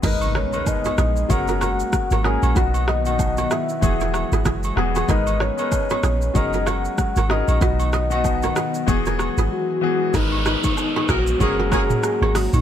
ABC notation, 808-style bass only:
X:1
M:4/4
L:1/16
Q:"Swing 16ths" 1/4=95
K:G#m
V:1 name="808-style bass" clef=bass
G,,,3 z3 A,,,2 F,,,4 z G,,,2 A,,, | B,,,6 z2 E,,,3 G,,, F,,,2 E,,,2 | G,,,3 z3 A,,,2 F,,,4 z G,,,2 A,,, | B,,,6 z2 E,,,3 G,,, z4 |
G,,,3 z3 A,,,2 F,,,4 z G,,,2 A,,, |]